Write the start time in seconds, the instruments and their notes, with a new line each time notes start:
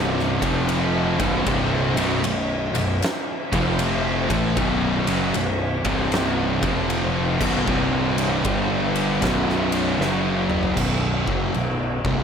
Already playing: picked electric bass C1, distorted electric guitar C2 G2 C3
0.19 snare
0.41 picked electric bass F1, distorted electric guitar F2 C3 F3, kick, ride
0.69 ride
1.18 picked electric bass B0, distorted electric guitar B1 F#2 B2, kick, ride
1.45 picked electric bass C1, distorted electric guitar C2 G2 C3, kick, ride
1.95 picked electric bass B0, distorted electric guitar B1 F#2 B2, ride
2.22 picked electric bass B0, distorted electric guitar B1 F#2, ride
2.73 picked electric bass B0, distorted electric guitar B1 F#2, ride
3.02 snare, ride
3.52 picked electric bass F1, distorted electric guitar F2 C3 F3, kick, ride
3.79 ride
4.29 picked electric bass A1, distorted electric guitar A2 E3 A3, kick, ride
4.57 picked electric bass B0, distorted electric guitar B1 F#2 B2, kick, ride
5.06 picked electric bass F#1, distorted electric guitar F#2 C#3 F#3, ride
5.34 picked electric bass B0, distorted electric guitar B1 F#2, ride
5.85 picked electric bass C1, distorted electric guitar C2 G2 C3, kick, ride
6.12 snare, ride
6.62 picked electric bass F1, distorted electric guitar F2 C3 F3, kick, ride
6.90 ride
7.38 picked electric bass B0, distorted electric guitar B1 F#2 B2, kick, crash
7.65 picked electric bass C1, distorted electric guitar C2 G2 C3, kick
8.18 ride
8.43 picked electric bass G1, distorted electric guitar G2 D3 G3, kick, ride
8.96 ride
9.21 picked electric bass B0, distorted electric guitar B1 F#2 B2, kick, snare, ride
9.49 snare
9.72 ride
9.99 picked electric bass F#1, distorted electric guitar F#2 C#3 F#3, snare
10.50 mid tom
10.63 floor tom
10.76 picked electric bass B0, distorted electric guitar B1 F#2 B2, kick, crash
11.25 picked electric bass F#1, distorted electric guitar F#2 C#3 F#3, kick
11.54 picked electric bass B0, distorted electric guitar B1 F#2, crash
12.04 picked electric bass C1, distorted electric guitar C2 G2 C3, kick